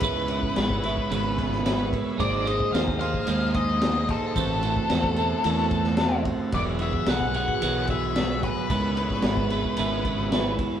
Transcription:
Already playing: B4 E5 G#5
0.00 C#2 C#3 G#3 B3 E4 B5, kick, ride
0.05 B4 C#5
0.28 B3 E4 B4, ride
0.43 kick
0.56 G#1 G#3 B3 E4 B4, snare, ride
0.70 kick
0.83 B3 E4 B4, ride
0.97 kick
1.11 G#1 C#3 G#3 B3 E4 B4, ride
1.38 B3 E4 B4, kick, snare, ride
1.52 snare
1.65 G#3 B3 E4 B4, snare, ride
1.93 kick, ride
2.18 G#1 G#3 A#3 D#4 G#4 C5 D5 D#5 A#5, kick, ride
2.45 D#4 G#4 C5 D#5, ride
2.60 kick
2.73 D#2 A#3 D#4 G#4 C5 F5, snare, ride
2.88 kick
2.99 D#4 G#4 C5 F5, ride
3.14 kick
3.27 D#2 G#3 A#3 D#4 G#4 C5, ride
3.54 D#4 G#4 C5 D#5, kick, ride
3.81 A#3 D#4 G#4 C5, snare, ride
4.09 A4, kick, ride
4.36 A1 A2 E3 A3 C4 F#4 A4 E5 F#5 A5, kick, ride
4.63 A3 C4 F#4 A4, ride
4.77 kick
4.90 E2 A3 C4 F#4 A4, snare, ride
5.04 kick
5.16 A3 C4 F#4 A4, ride
5.44 E2 A2 E3 A3 C4 F#4 A4, ride
5.71 A3 C4 F#4 A4, kick, ride
5.84 snare
5.97 A3 C4 F#4 A4, snare, ride
6.25 kick, ride
6.52 E1 E3 F#3 B3 F#4 G#4 B4 D5, kick, ride
6.57 G#5
6.79 B3 F#4 G#4 E5, ride
6.93 kick
7.06 B1 F#3 B3 F#4 G#4 F#5, snare, ride
7.21 kick
7.34 B3 F#4 G#4 F#5, ride
7.48 kick
7.62 B1 E3 F#3 B3 F#4 G#4, ride
7.87 F#4 G#4 E5, kick, ride
7.92 B3
8.16 F#3 B3 F#4 G#4, snare, ride
8.30 snare
8.43 B4, kick, ride
8.70 C#2 C#3 G#3 B3 E4 B4 C#5, kick, ride
8.97 B3 E4 B4, ride
9.10 kick, snare
9.22 G#1 G#3 B3 E4 B4, snare, ride
9.37 kick
9.50 B3 E4 B4, ride
9.64 kick
9.77 G#1 C#3 G#3 B3 E4 B4, ride
10.05 B3 E4 B4, kick, ride
10.32 G#3 B3 E4 B4, snare, ride
10.59 kick, ride

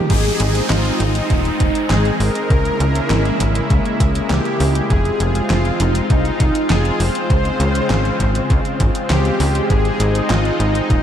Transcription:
Already playing: G4, swell
0.10 G#1 G#3 C4 D#4 G#4, kick, closed hi-hat, crash, downlifter
0.25 closed hi-hat
0.40 G#1, closed hi-hat
0.55 closed hi-hat
0.70 G#1 F4, snare, clap, closed hi-hat
0.85 closed hi-hat
1.00 G#1 D#4, closed hi-hat
1.15 closed hi-hat
1.30 D#1 D#4, kick, closed hi-hat
1.45 closed hi-hat
1.60 D#1, kick, closed hi-hat
1.75 closed hi-hat
1.90 G#1 G#4, snare, clap, closed hi-hat
2.05 closed hi-hat
2.20 G#1 A#4, open hi-hat
2.35 closed hi-hat
2.50 C#2 C#3 A#3 E4, kick, closed hi-hat
2.65 closed hi-hat
2.80 C#2, closed hi-hat
2.95 closed hi-hat
3.10 G#1, snare, clap, closed hi-hat
3.25 closed hi-hat
3.40 G#1, kick, closed hi-hat
3.55 closed hi-hat
3.70 C#2, kick, closed hi-hat
3.85 closed hi-hat
4.00 C#2, kick, closed hi-hat
4.15 closed hi-hat
4.30 C#2 G4, snare, clap, closed hi-hat
4.45 closed hi-hat
4.60 C#2, open hi-hat
4.75 closed hi-hat
4.90 F1 C4 F4 G#4, kick, closed hi-hat
5.05 closed hi-hat
5.20 F1, closed hi-hat
5.35 closed hi-hat
5.50 F1 F4, snare, clap, closed hi-hat
5.65 closed hi-hat
5.80 F1 D#4, closed hi-hat
5.95 closed hi-hat
6.10 C2 D#4, kick, closed hi-hat
6.25 closed hi-hat
6.40 C2, kick, closed hi-hat
6.55 closed hi-hat
6.70 F1 G#4, snare, clap, closed hi-hat
6.85 closed hi-hat
7.00 F1 C5, open hi-hat
7.15 closed hi-hat
7.30 C#2 C#3 G#3, kick, closed hi-hat
7.45 closed hi-hat
7.60 C#2, closed hi-hat
7.75 closed hi-hat
7.90 G#1, snare, clap, closed hi-hat
8.05 closed hi-hat
8.20 G#1, kick, closed hi-hat
8.35 closed hi-hat
8.50 C#2, kick, closed hi-hat
8.65 closed hi-hat
8.80 G#1, kick, closed hi-hat
8.95 closed hi-hat
9.10 C#2 G4, snare, clap, closed hi-hat
9.25 closed hi-hat
9.40 C#2, open hi-hat
9.55 closed hi-hat
9.70 G#1 D#4 G#4, kick, closed hi-hat
9.85 closed hi-hat
10.00 G#1, closed hi-hat
10.15 closed hi-hat
10.30 G#1 F4, snare, clap, closed hi-hat
10.45 closed hi-hat
10.60 G#1 D#4, closed hi-hat
10.75 closed hi-hat
10.90 D#1 D#4, kick, closed hi-hat

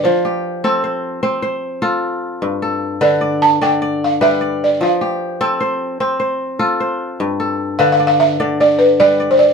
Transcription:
Already playing: B4 D5
0.04 F3 C5
0.25 G4
0.64 C4 A4
0.84 C5
1.23 C4 C5
1.42 C5
1.82 F4 A4
2.42 G2
2.62 A4
3.01 D3 B4 D5
3.21 D5
3.42 A5
3.61 D3 D5 G5
3.82 D5
4.04 F5
4.21 G3 B4 E5
4.41 D5
4.64 D5
4.81 F3 F5
5.01 G4
5.41 C4 A4
5.60 C5
6.00 C4 C5
6.20 C5
6.59 F4 A4
6.80 C5
7.20 G2
7.40 A4
7.79 D3 B4 F5
7.92 F5
8.00 D5
8.07 F5
8.20 E5
8.40 D3 D5
8.60 D5
8.79 B4
9.00 G3 B4 D5
9.20 D5
9.31 C5
9.39 D5

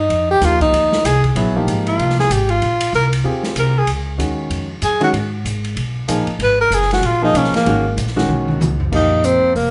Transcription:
0.00 D#4
0.09 F2, ride
0.31 G4
0.41 D#2 F3 A#3 D#4 F4 G4, snare, hi-hat pedal, ride
0.61 D#4, kick, ride
0.73 D2, ride
0.92 snare
1.04 C2 G#4, snare, hi-hat pedal, ride
1.24 kick, ride
1.35 A#1 F#3 B3 E4 G#4, ride
1.55 F3 A#3 D#4 G4
1.67 G#1, hi-hat pedal, ride
1.87 F4, ride
1.99 C2, ride
2.10 snare
2.20 G#4, snare
2.30 G#1 G4, hi-hat pedal, ride
2.49 F4, ride
2.62 A#1, ride
2.81 ride
2.93 C2 A#4, hi-hat pedal
3.13 ride
3.24 D#2 C4 F4 G4 G#4
3.43 snare
3.55 C2 A#4, hi-hat pedal, ride
3.78 G#4
3.87 C#2, ride
4.18 D#2 D#3 G#3 C#4 F#4, hi-hat pedal, ride
4.50 F2, ride
4.82 F#2 G#4, hi-hat pedal, ride
5.00 D#3 G#3 C#4 F#4, ride
5.13 G#2, ride
5.45 G#1, hi-hat pedal, ride
5.64 ride
5.76 B1, ride
6.08 A#1 F3 A#3 D#4 G#4, hi-hat pedal, ride
6.27 muted upright bass stroke, ride
6.39 G#1 B4, ride
6.61 A#4
6.70 F#1, hi-hat pedal, ride
6.74 G#4
6.82 snare
6.91 F#4, snare, ride
7.02 A#1, ride
7.06 F4
7.22 F3 A#3 D#4 G#4
7.34 B1 C#4, hi-hat pedal, ride
7.44 snare
7.53 A#3, muted upright bass stroke, snare, ride
7.66 G#1 D#3 G#3 C#4 F#4, ride
7.97 A#1, hi-hat pedal, ride
8.07 snare
8.16 D#3 G#3 C#4 F#4, snare
8.29 B1, high tom
8.48 high tom
8.60 C#2, hi-hat pedal, high tom
8.80 floor tom
8.92 A#1 F3 A#3 D#4 G4, kick, crash
9.24 C4, closed hi-hat
9.43 muted upright bass stroke
9.55 F1 A#3, open hi-hat

